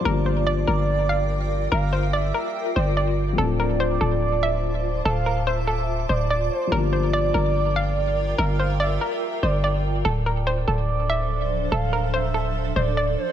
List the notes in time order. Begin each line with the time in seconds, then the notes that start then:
Already playing: F4
0.01 F3 G3
0.05 G1 A#3 D4 A#4 D5 G5 D6
0.11 F4
0.26 C5
0.47 D5
0.68 G1 A#4
1.09 F5
1.72 G1 A#4 F5
1.93 C5
2.13 D5 E5
2.34 A#4
2.76 G1 C5 D5
2.97 D5
3.33 F3 A3
3.38 D1 C4 D4 A4 C5 D5 A5 D6
3.43 F4
3.60 A#4
3.80 C5
4.01 D1 A4
4.43 E5
5.05 D1 A4 F5
5.26 A#4
5.47 C5 E5
5.67 A4
6.09 D1 C5 D5
6.30 D5
6.51 C5
6.67 F3 G3
6.72 G1 A#3 D4 F4 A#4 G5
6.78 F4
6.93 C5
7.13 D5
7.34 G1 A#4
7.76 F5
8.38 G1 A#4 F5
8.59 C5
8.80 D5 E5
9.01 A#4
9.43 G1 C5 D5
9.64 D5
10.05 D1 F3 D4 A4 C5
10.26 A#4
10.47 C5
10.68 D1 A4
11.10 E5
11.72 D1 A4 F5
11.93 A#4
12.14 C5 E5
12.34 A4
12.76 D1 C5 D5
12.97 D5
13.18 C5